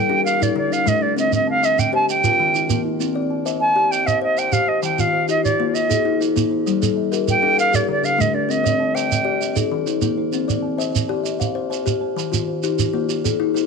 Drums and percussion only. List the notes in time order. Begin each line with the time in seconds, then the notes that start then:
0.27 shekere
0.42 shekere
0.73 shekere
0.87 shekere
1.18 shekere
1.32 shekere
1.63 shekere
1.79 shekere
2.09 shekere
2.24 shekere
2.55 shekere
2.70 shekere
3.01 shekere
3.46 shekere
3.93 shekere
4.08 shekere
4.38 shekere
4.52 shekere
4.83 shekere
4.99 shekere
5.29 shekere
5.45 shekere
5.75 shekere
5.91 shekere
6.21 shekere
6.37 shekere
6.67 shekere
6.83 shekere
7.13 shekere
7.28 shekere
7.59 shekere
7.74 shekere
8.05 shekere
8.21 shekere
8.51 shekere
8.66 shekere
8.97 shekere
9.12 shekere
9.42 shekere
9.56 shekere
9.87 shekere
10.02 shekere
10.33 shekere
10.50 shekere
10.80 shekere
10.96 shekere
11.26 shekere
11.41 shekere
11.73 shekere
11.87 shekere
12.19 shekere
12.34 shekere
12.63 shekere
12.79 shekere
13.10 shekere
13.25 shekere
13.56 shekere